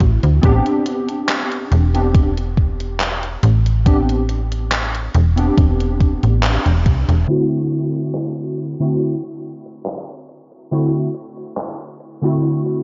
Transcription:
Already playing: synth keys A3 C4 E4 F#4
0.00 fm bass A1, kick, closed hi-hat
0.23 fm bass D2, closed hi-hat
0.41 fm bass A1, synth keys B3 C4 D4 G4, kick, closed hi-hat
0.66 closed hi-hat
0.86 closed hi-hat
1.09 closed hi-hat
1.29 clap, closed hi-hat
1.52 closed hi-hat
1.72 fm bass E1, closed hi-hat
1.94 synth keys B3 C4 D4 G4, closed hi-hat
2.15 kick, closed hi-hat
2.37 closed hi-hat
2.57 kick
2.80 closed hi-hat
3.00 clap, closed hi-hat
3.23 closed hi-hat
3.43 fm bass A1, closed hi-hat
3.66 closed hi-hat
3.85 synth keys B3 C4 D4 G4, kick, closed hi-hat
4.09 closed hi-hat
4.29 closed hi-hat
4.52 closed hi-hat
4.72 clap, closed hi-hat
4.95 closed hi-hat
5.14 fm bass E1, closed hi-hat
5.36 synth keys B3 C4 D4 G4, closed hi-hat
5.57 fm bass E1, kick, closed hi-hat
5.80 closed hi-hat
6.00 kick, closed hi-hat
6.23 fm bass A1, closed hi-hat
6.43 clap, closed hi-hat
6.66 fm bass E1, closed hi-hat
6.86 fm bass C2, kick, closed hi-hat
7.09 fm bass E1, closed hi-hat
7.27 synth keys D3 A3 C4 E4 F#4, closed hi-hat, crash
7.52 closed hi-hat
7.72 closed hi-hat
7.95 closed hi-hat
8.14 clap, closed hi-hat
8.37 closed hi-hat
8.57 closed hi-hat
8.79 synth keys D3 A3 C4 E4 F#4, closed hi-hat
9.00 closed hi-hat
9.23 closed hi-hat
9.66 closed hi-hat
9.86 clap, closed hi-hat
10.09 closed hi-hat
10.29 closed hi-hat
10.52 closed hi-hat
10.71 synth keys D3 A3 C4 E4 F#4, closed hi-hat
10.94 closed hi-hat
11.14 closed hi-hat
11.37 closed hi-hat
11.57 clap, closed hi-hat
11.80 closed hi-hat
12.00 closed hi-hat
12.21 synth keys D3 A3 C4 E4 F#4, closed hi-hat
12.43 closed hi-hat
12.66 closed hi-hat

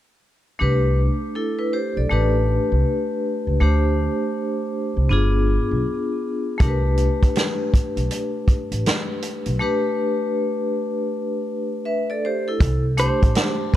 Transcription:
0.59 upright bass C2, vibraphone A3 D4 G4 B4
1.35 vibraphone E4 A4
1.59 vibraphone E4 B4
1.73 vibraphone G4 C5
1.97 upright bass B1, vibraphone A4 D5
2.10 upright bass A1, vibraphone A3 D4 G4 B4
2.72 upright bass C2
3.47 upright bass C#2
3.60 upright bass D2, vibraphone A3 D4 G4 C5
4.97 upright bass C2
5.09 upright bass G1, vibraphone B3 D4 F4 G#4
5.71 upright bass B1
6.58 upright bass C2, vibraphone A3 D4 G4 A#4, kick, closed hi-hat
6.68 vibraphone B4
6.98 closed hi-hat
7.23 kick, closed hi-hat
7.36 snare, closed hi-hat
7.74 kick, closed hi-hat
7.97 upright bass B1, closed hi-hat
8.11 closed hi-hat
8.48 kick, closed hi-hat
8.72 upright bass A1, closed hi-hat
8.86 snare, closed hi-hat
9.22 closed hi-hat
9.46 upright bass B1, closed hi-hat
9.59 vibraphone A3 D4 G4 B4
11.85 vibraphone B4 E5
12.10 vibraphone A4 D5
12.25 vibraphone G4 C5
12.48 vibraphone E4 A4
12.60 upright bass C2, kick, closed hi-hat
12.97 vibraphone A3 D4 G4 C5, hollow-body jazz guitar C5, closed hi-hat
13.23 upright bass A1, kick, closed hi-hat
13.35 snare, closed hi-hat

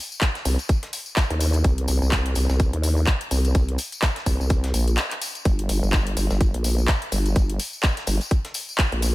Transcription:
0.12 tambourine
0.21 kick, snare, clap, closed hi-hat, tambourine
0.35 snare, closed hi-hat
0.45 wobble bass C2, closed hi-hat, open hi-hat, tambourine
0.59 closed hi-hat, tambourine
0.69 kick, closed hi-hat, tambourine
0.83 snare, closed hi-hat
0.93 closed hi-hat, open hi-hat, tambourine
1.06 tambourine
1.16 kick, snare, clap, closed hi-hat, tambourine
1.30 wobble bass D#2, closed hi-hat
1.40 closed hi-hat, open hi-hat, tambourine
1.53 closed hi-hat, tambourine
1.64 wobble bass C2, kick, closed hi-hat, tambourine
1.78 closed hi-hat
1.88 wobble bass C2, closed hi-hat, open hi-hat, tambourine
2.02 wobble bass C2, tambourine
2.12 kick, snare, clap, closed hi-hat
2.26 closed hi-hat
2.35 wobble bass C2, closed hi-hat, open hi-hat, tambourine
2.49 wobble bass C2, snare, tambourine
2.60 kick, closed hi-hat, tambourine
2.73 wobble bass D#2, closed hi-hat
2.83 closed hi-hat, open hi-hat, tambourine
2.97 tambourine
3.07 kick, snare, clap, closed hi-hat, tambourine
3.21 closed hi-hat
3.31 wobble bass C2, closed hi-hat, open hi-hat, tambourine
3.45 closed hi-hat, tambourine
3.55 wobble bass C2, kick, closed hi-hat, tambourine
3.69 closed hi-hat
3.78 closed hi-hat, open hi-hat, tambourine
3.92 closed hi-hat, tambourine
4.02 kick, snare, clap, closed hi-hat, tambourine
4.16 snare, closed hi-hat
4.26 wobble bass C2, kick, open hi-hat, tambourine
4.40 wobble bass C2, tambourine
4.50 kick, closed hi-hat, tambourine
4.64 snare, closed hi-hat
4.74 wobble bass A#1, closed hi-hat, open hi-hat, tambourine
4.88 closed hi-hat, tambourine
4.97 snare, clap, closed hi-hat, tambourine
5.11 clap, closed hi-hat
5.22 closed hi-hat, open hi-hat, tambourine
5.35 closed hi-hat, tambourine
5.45 wobble bass G1, kick, closed hi-hat, tambourine
5.59 closed hi-hat
5.69 wobble bass G1, closed hi-hat, open hi-hat, tambourine
5.83 wobble bass G1, tambourine
5.93 kick, snare, clap, closed hi-hat, tambourine
6.07 closed hi-hat
6.17 wobble bass G1, closed hi-hat, open hi-hat, tambourine
6.30 wobble bass G1, snare, tambourine
6.41 kick, closed hi-hat, tambourine
6.54 wobble bass A#1, closed hi-hat
6.64 closed hi-hat, open hi-hat, tambourine
6.78 tambourine
6.88 kick, snare, clap, closed hi-hat, tambourine
7.02 closed hi-hat
7.12 wobble bass G1, closed hi-hat, open hi-hat, tambourine
7.26 closed hi-hat, tambourine
7.36 wobble bass G1, kick, closed hi-hat, tambourine
7.50 closed hi-hat
7.59 closed hi-hat, open hi-hat, tambourine
7.73 tambourine
7.83 kick, snare, clap, closed hi-hat, tambourine
7.97 snare, closed hi-hat
8.07 wobble bass G1, closed hi-hat, open hi-hat, tambourine
8.21 closed hi-hat, tambourine
8.31 kick, closed hi-hat, tambourine
8.45 snare, closed hi-hat
8.54 closed hi-hat, open hi-hat, tambourine
8.69 tambourine
8.78 kick, snare, clap, closed hi-hat
8.92 wobble bass A#1, closed hi-hat
9.02 closed hi-hat, open hi-hat, tambourine

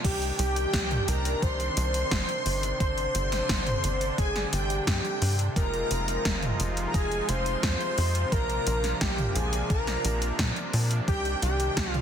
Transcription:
0.04 analog synth bass C2, supersaw synth C3 D#3 D4, analog synth lead G4, string machine G5, kick, closed hi-hat, crash
0.22 closed hi-hat
0.39 analog synth bass C2, analog synth lead G4, string machine G5, closed hi-hat
0.56 closed hi-hat
0.73 analog synth bass C2, kick, snare, closed hi-hat
0.91 closed hi-hat, mid tom
1.08 analog synth bass C2, analog synth lead A#4, string machine A#5, closed hi-hat
1.25 closed hi-hat
1.42 analog synth bass C2, analog synth lead C5, string machine C6, kick, closed hi-hat
1.60 closed hi-hat
1.77 analog synth bass C2, closed hi-hat
1.94 closed hi-hat
2.11 analog synth bass G1, kick, snare, closed hi-hat
2.29 closed hi-hat
2.46 analog synth bass G1, open hi-hat
2.63 closed hi-hat
2.80 analog synth bass G1, supersaw synth D3 D4, analog synth lead C5, string machine C6, kick, closed hi-hat
2.98 closed hi-hat
3.15 analog synth bass G1, closed hi-hat
3.32 snare, closed hi-hat
3.49 analog synth bass G1, kick, snare, closed hi-hat
3.67 closed hi-hat, mid tom
3.84 analog synth bass G1, closed hi-hat
4.01 closed hi-hat
4.18 analog synth bass G1, analog synth lead G#4, string machine G#5, kick, closed hi-hat
4.36 snare, closed hi-hat
4.53 analog synth bass G1, analog synth lead G4, string machine G5, closed hi-hat
4.70 closed hi-hat
4.87 analog synth bass G2, analog synth lead G4, string machine G5, kick, snare, closed hi-hat
5.05 closed hi-hat
5.22 analog synth bass G2, open hi-hat
5.39 closed hi-hat
5.56 analog synth bass F1, supersaw synth F3 G#3 D#4 F4, analog synth lead A#4, string machine A#5, kick, closed hi-hat
5.74 closed hi-hat
5.91 analog synth bass F1, closed hi-hat
6.08 closed hi-hat
6.25 analog synth bass F1, kick, snare, closed hi-hat
6.42 closed hi-hat, mid tom
6.60 analog synth bass F1, closed hi-hat
6.77 closed hi-hat
6.87 analog synth lead A#4, string machine A#5
6.94 analog synth bass F1, analog synth lead G#4, string machine G#5, kick, closed hi-hat
7.12 closed hi-hat
7.29 analog synth bass F1, analog synth lead C5, string machine C6, closed hi-hat
7.46 closed hi-hat
7.63 analog synth bass F2, analog synth lead C5, string machine C6, kick, snare, closed hi-hat
7.81 closed hi-hat
7.98 analog synth bass F2, open hi-hat
8.15 closed hi-hat
8.32 analog synth bass A#1, supersaw synth F3 A#3 D4, analog synth lead A#4, string machine A#5, kick, closed hi-hat
8.50 closed hi-hat
8.67 analog synth bass A#1, closed hi-hat
8.84 snare, closed hi-hat
9.01 analog synth bass A#1, analog synth lead G4, string machine G5, kick, snare, closed hi-hat
9.18 closed hi-hat, mid tom
9.35 analog synth bass A#1, analog synth lead G#4, string machine G#5, closed hi-hat
9.53 closed hi-hat
9.70 analog synth bass A#1, analog synth lead A#4, string machine A#5, kick, closed hi-hat
9.87 snare, closed hi-hat
10.05 analog synth bass A#1, closed hi-hat
10.22 closed hi-hat
10.39 analog synth bass A#2, kick, snare, closed hi-hat
10.56 closed hi-hat
10.73 analog synth bass A#2, open hi-hat
10.91 closed hi-hat
11.08 analog synth bass C2, supersaw synth D#3, analog synth lead G4, string machine G5, kick, closed hi-hat
11.25 closed hi-hat
11.42 analog synth bass C2, analog synth lead G4, string machine G5, closed hi-hat
11.60 closed hi-hat
11.77 analog synth bass C2, kick, snare, closed hi-hat
11.92 analog synth lead F4, string machine F5, closed hi-hat, mid tom

